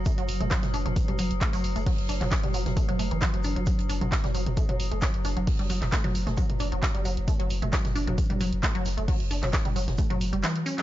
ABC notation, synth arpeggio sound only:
X:1
M:4/4
L:1/16
Q:1/4=133
K:F#phr
V:1 name="Synth arpeggio sound" clef=bass
A, F, z A, F, z D F, z G, F, z A, F, z A, | F, z D F, z G, F, z A, F, A, E, F, F, D F, | F, z D F, z G, F, z A, F, z A, F, z D F, | z G, F, z A, F, z A, F, z D F, z G, F, z |
A, F, z A, F, z D F, z G, F, z A, F, z A, | F, z D F, z G, F, z A, F, z G, E, z C F, |]